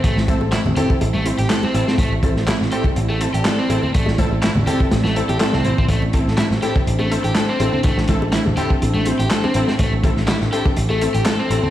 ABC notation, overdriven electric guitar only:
X:1
M:4/4
L:1/16
Q:"Swing 16ths" 1/4=123
K:Am
V:1 name="Overdriven electric guitar"
A, z3 E z G z2 A, z G A C2 C | A, z3 E z G z2 A, z G A C2 C | A, z3 E z G z2 A, z G A C2 C | A, z3 E z G z2 A, z G A C2 C |
A, z3 E z G z2 A, z G A C2 C | A, z3 E z G z2 A, z G A C2 C |]